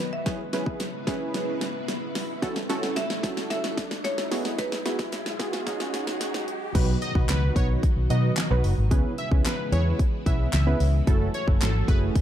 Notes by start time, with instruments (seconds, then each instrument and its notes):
Already playing: string machine D#3 F#3 B3 F#4 B4, riser
0.13 marimba E5
0.26 string machine C#3 G#3 E4 B4, synth keys C#4 E4 G#4 B4, kick, snare, closed hi-hat
0.53 synth keys C#4 E4 G#4 B4, snare, closed hi-hat
0.66 kick
0.80 snare, closed hi-hat
1.07 synth keys C#4 E4 G#4 B4, kick, snare, closed hi-hat
1.34 snare, closed hi-hat
1.61 snare, closed hi-hat
1.88 snare, closed hi-hat
2.15 snare, open hi-hat
2.42 string machine F#3 A3 A4, synth keys C#4 E4 F#4 A4, kick, snare, closed hi-hat
2.56 snare
2.69 synth keys C#4 E4 F#4 A4, snare, closed hi-hat
2.83 snare
2.96 marimba E5, snare, closed hi-hat
3.10 snare
3.23 synth keys C#4 E4 F#4 A4, kick, snare, closed hi-hat
3.37 snare
3.50 marimba E5, snare, closed hi-hat
3.64 snare
3.77 kick, snare, closed hi-hat
3.91 snare
4.04 marimba C#5, snare, closed hi-hat
4.18 snare
4.31 string machine B2 G#3 G#4, synth keys B3 E4 F#4 G#4, snare, open hi-hat
4.45 snare
4.59 marimba B4, kick, snare, closed hi-hat
4.72 snare
4.85 synth keys B3 E4 F#4 G#4, snare, closed hi-hat
4.99 kick, snare
5.12 snare, closed hi-hat
5.26 snare
5.39 synth keys B3 E4 F#4 G#4, kick, snare, closed hi-hat
5.53 snare
5.66 string machine C#3 D#4, synth keys C#4 D#4 F#4 G#4, kick, snare, closed hi-hat
5.80 snare
5.94 snare, closed hi-hat
6.07 snare
6.21 snare, closed hi-hat
6.34 snare
6.48 closed hi-hat
6.75 fingered electric bass B1, string machine B2 D#3 F#3 D#4 F#4, synth keys F#3 B3 D#4 F#4 B4, kick, closed hi-hat, crash
7.02 digital synth lead D#5, closed hi-hat
7.15 fingered electric bass B1, synth keys F#3 B3 D#4 F#4 B4, kick
7.29 fingered electric bass C#2, digital synth lead B4, snare, clap, closed hi-hat
7.56 fingered electric bass B1, synth keys F#3 B3 D#4 F#4 B4, digital synth lead C#5, kick, closed hi-hat
7.83 kick, closed hi-hat
7.97 fingered electric bass B1
8.10 fingered electric bass B2, synth keys F#3 B3 D#4 F#4 B4, digital synth lead D#5, closed hi-hat
8.37 snare, clap, closed hi-hat
8.51 fingered electric bass B1, synth keys F#3 B3 D#4 F#4 B4
8.64 fingered electric bass F#1, open hi-hat
8.78 fingered electric bass G#1
8.91 fingered electric bass C#2, string machine C#3 E3 G#3 B3 E4, synth keys B3 C#4 E4 G#4 B4, kick, closed hi-hat
9.18 digital synth lead E5, closed hi-hat
9.31 fingered electric bass C#2, synth keys B3 C#4 E4 G#4 B4, kick
9.45 digital synth lead B4, snare, clap, closed hi-hat
9.72 fingered electric bass E2, synth keys B3 C#4 E4 G#4 B4, digital synth lead C#5, closed hi-hat
9.99 kick, closed hi-hat
10.26 fingered electric bass B1, synth keys B3 C#4 E4 G#4 B4, digital synth lead E5, kick, closed hi-hat
10.53 fingered electric bass C#2, digital synth lead E5, snare, clap, closed hi-hat
10.67 synth keys B3 C#4 E4 G#4 B4
10.80 fingered electric bass C#2, open hi-hat
11.07 fingered electric bass F#1, string machine F#3 A3 C#4 F#4, synth keys A3 C#4 E4 F#4 A4, kick, closed hi-hat
11.34 digital synth lead C#5, closed hi-hat
11.48 fingered electric bass F#1, synth keys A3 C#4 E4 F#4 A4, kick
11.61 fingered electric bass G#1, digital synth lead A4, snare, clap, closed hi-hat
11.88 fingered electric bass F#1, synth keys A3 C#4 E4 F#4 G#4, digital synth lead B4, kick, closed hi-hat
12.15 kick, closed hi-hat